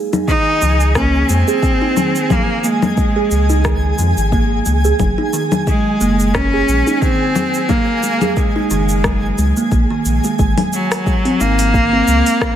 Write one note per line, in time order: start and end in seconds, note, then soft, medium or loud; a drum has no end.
0.00 10.41 G#4 medium
0.00 10.41 G#5 medium
0.13 0.22 D#4 loud
0.13 low conga medium
0.13 cabasa soft
0.28 0.46 D#3 medium
0.28 0.91 D#4 loud
0.28 kick loud
0.28 cabasa soft
0.61 1.24 C#2 medium
0.61 0.94 F3 medium
0.61 cabasa medium
0.80 cabasa soft
0.95 1.28 A#3 medium
0.95 1.31 C#4 medium
0.95 kick loud
0.95 cross-stick medium
0.95 cabasa soft
1.29 1.44 F2 loud
1.29 1.47 G#3 medium
1.29 2.33 C4 medium
1.29 cabasa medium
1.48 1.62 G#4 medium
1.48 cabasa soft
1.63 kick loud
1.63 cabasa soft
1.82 1.90 D#4 loud
1.96 2.14 D#3 medium
1.96 low conga medium
1.96 cabasa medium
2.16 cabasa soft
2.30 2.62 F3 medium
2.30 2.66 A#3 medium
2.30 kick loud
2.30 low conga medium
2.30 cabasa soft
2.64 3.99 G#3 medium
2.64 2.96 A#3 medium
2.64 cabasa medium
2.82 low conga medium
2.82 cabasa soft
2.97 3.15 G#3 medium
2.97 kick loud
2.97 cabasa soft
3.16 3.31 G#4 medium
3.31 3.93 C#2 medium
3.31 cabasa medium
3.50 3.58 D#4 medium
3.50 cabasa soft
3.65 3.83 D#3 medium
3.65 kick medium
3.65 cross-stick medium
3.65 cabasa soft
3.98 4.13 F2 medium
3.98 4.31 F3 medium
3.98 cabasa medium
4.17 4.61 G#1 medium
4.17 cabasa soft
4.32 4.65 A#3 medium
4.32 kick loud
4.32 cabasa soft
4.66 4.93 C#2 medium
4.66 4.84 G#3 medium
4.66 cabasa medium
4.85 4.99 G#4 medium
4.85 cabasa soft
5.00 5.14 F#1 loud
5.00 kick loud
5.00 low conga medium
5.00 cabasa soft
5.18 5.27 D#4 loud
5.33 5.51 D#3 loud
5.33 cabasa medium
5.52 low conga medium
5.52 cabasa soft
5.67 6.00 F#3 medium
5.67 6.36 G#3 loud
5.67 kick medium
5.67 cabasa soft
6.01 6.63 F#1 medium
6.01 6.33 A#3 medium
6.01 cabasa medium
6.20 cabasa soft
6.34 6.53 G#3 medium
6.34 6.96 C#4 loud
6.34 kick loud
6.34 cross-stick medium
6.34 cabasa soft
6.53 6.68 G#4 medium
6.68 6.83 A#1 medium
6.68 cabasa medium
6.87 6.96 D#4 medium
6.87 cabasa soft
6.96 7.03 C#4 medium
7.01 7.20 D#3 medium
7.01 7.70 C4 loud
7.01 kick loud
7.01 cabasa soft
7.36 7.68 F#3 medium
7.36 low conga medium
7.36 cabasa medium
7.54 cabasa soft
7.69 8.38 A#3 loud
7.69 8.02 A#3 medium
7.69 kick loud
7.69 low conga medium
7.69 cabasa soft
8.03 8.21 G#3 medium
8.03 cabasa medium
8.21 8.36 G#4 medium
8.21 low conga medium
8.21 cabasa soft
8.36 9.72 G#3 medium
8.36 kick loud
8.36 cabasa soft
8.56 8.64 D#4 loud
8.71 9.33 F#1 medium
8.71 8.89 D#3 loud
8.71 cabasa medium
8.89 cabasa soft
9.04 9.21 F#3 medium
9.04 kick loud
9.04 cross-stick medium
9.04 cabasa soft
9.38 9.52 C#2 medium
9.38 9.55 G#3 medium
9.38 cabasa medium
9.57 9.70 A#3 medium
9.57 cabasa soft
9.72 9.86 A#1 loud
9.72 9.90 A#3 medium
9.72 kick loud
9.72 cabasa soft
9.90 10.04 D#3 medium
10.05 10.20 A#1 medium
10.05 cabasa medium
10.24 10.33 G#3 medium
10.24 cabasa soft
10.39 10.54 G#1 loud
10.39 10.50 G#3 medium
10.39 kick loud
10.39 cabasa soft
10.58 open hi-hat soft
10.58 low conga medium
10.73 11.42 F#3 loud
10.73 cabasa medium
10.92 cross-stick medium
10.92 open hi-hat medium
10.92 cabasa soft
11.06 11.24 G#3 medium
11.06 kick loud
11.06 cabasa soft
11.25 11.39 C4 loud
11.25 open hi-hat soft
11.40 12.02 G#1 medium
11.40 12.56 A#3 loud
11.40 11.51 D#4 medium
11.40 cabasa medium
11.59 open hi-hat medium
11.59 cabasa soft
11.74 11.92 A#3 medium
11.74 kick loud
11.74 cabasa soft
11.93 12.07 C4 medium
12.08 12.22 C#2 loud
12.08 12.19 G#3 medium
12.08 cabasa medium
12.26 open hi-hat medium
12.26 cabasa soft
12.41 kick loud
12.41 cross-stick medium
12.41 cabasa soft